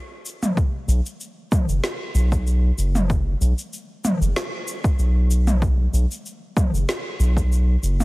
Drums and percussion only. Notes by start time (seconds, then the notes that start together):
0.26 shaker
0.43 mid tom, shaker
0.57 kick, shaker
0.89 shaker
1.06 shaker
1.21 shaker
1.52 kick, mid tom, shaker
1.69 shaker
1.84 snare, shaker
2.15 shaker
2.32 kick, shaker
2.47 shaker
2.78 shaker
2.95 mid tom, shaker
3.10 kick, shaker
3.42 shaker
3.58 shaker
3.73 shaker
4.05 mid tom, shaker
4.22 shaker
4.36 snare, shaker
4.68 shaker
4.84 kick, shaker
4.99 shaker
5.31 shaker
5.47 mid tom, shaker
5.62 kick, shaker
5.94 shaker
6.11 shaker
6.26 shaker
6.57 kick, mid tom, shaker
6.75 shaker
6.89 snare, shaker
7.20 shaker
7.37 kick, shaker
7.52 shaker
7.84 shaker
8.00 mid tom, shaker